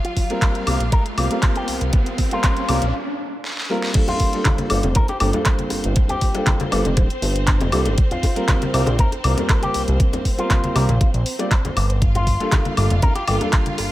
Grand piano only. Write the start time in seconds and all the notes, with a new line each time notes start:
0.30 G3 A#3 C4 F4 A#4
0.67 G3 A#3 C4 F4 A#4
1.17 G3 A#3 C4 F4 A#4
1.30 G3 A#3 C4 F4 A#4
2.32 G3 A#3 C4 F4 A#4
2.69 G3 A#3 C4 F4 A#4
3.69 G3 A#3 C4 F4 A#4
3.94 G3 A#3 D4 F4 A4
4.33 G3 A#3 D4 F4 A4
4.70 G3 A#3 D4 F4 A4
5.20 G3 A#3 D4 F4 A4
5.33 G3 A#3 D4 F4 A4
6.34 G3 A#3 D4 F4 A4
6.71 G3 A#3 D4 F4 A4
7.72 G3 A#3 D4 F4 A4
8.35 G3 A#3 C4 F4 A#4
8.73 G3 A#3 C4 F4 A#4
9.24 G3 A#3 C4 F4 A#4
9.37 G3 A#3 C4 F4 A#4
10.38 G3 A#3 C4 F4 A#4
10.75 G3 A#3 C4 F4 A#4
11.39 G3 A#3 C4 F4 D5
12.40 G3 A#3 D4 F4 A4
12.77 G3 A#3 D4 F4 A4
13.27 G3 A#3 D4 F4 A4
13.40 G3 A#3 D4 F4 A4